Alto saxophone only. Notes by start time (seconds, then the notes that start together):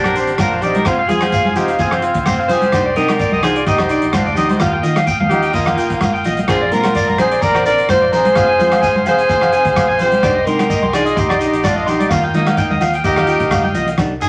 Already playing: G4
0.39 F4
0.62 G4
0.86 F4
1.09 G#4
1.56 G4
1.79 F4
2.48 C5
2.96 A#4
3.43 G#4
3.66 G4
4.13 F4
4.35 G4
4.58 F4
5.29 G4
5.53 F4
6.48 G#4
6.73 A#4
7.20 C5
7.42 D5
7.67 D5
7.90 C5
8.13 C5
9.09 C5
10.02 C5
10.45 A#4
10.95 G#4
11.18 G4
11.66 F4
11.88 G4
12.11 F4
12.36 D#4
13.05 G4